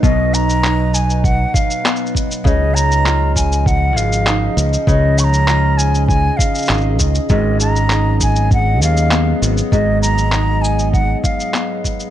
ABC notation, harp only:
X:1
M:4/4
L:1/8
Q:1/4=99
K:G#dor
V:1 name="Harp"
[B,,B,D]2 D4 B,2 | C,2 E4 D2 | C,2 E4 D2 | G,,2 D4 B,2 |
G,,2 D4 B,2 |]